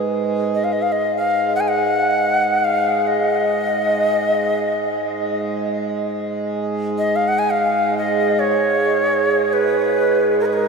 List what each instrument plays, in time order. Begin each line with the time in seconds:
Already playing: harmonium G#2 G#3
0.55 native american-style wooden flute D#5
0.64 native american-style wooden flute F5
0.73 native american-style wooden flute D#5
0.82 native american-style wooden flute F5
0.92 native american-style wooden flute D#5
1.17 native american-style wooden flute F5
1.56 native american-style wooden flute F#5
1.60 native american-style wooden flute G#5
1.68 native american-style wooden flute F#5
2.64 native american-style wooden flute F5
3.07 native american-style wooden flute D#5
6.98 native american-style wooden flute D#5
7.16 native american-style wooden flute F5
7.28 native american-style wooden flute F#5
7.39 native american-style wooden flute G#5
7.51 native american-style wooden flute F5
7.73 glass harmonica G#4
7.98 native american-style wooden flute D#5
8.39 native american-style wooden flute C#5
9.53 native american-style wooden flute B4
10.40 native american-style wooden flute A#4
10.45 native american-style wooden flute B4
10.53 native american-style wooden flute A#4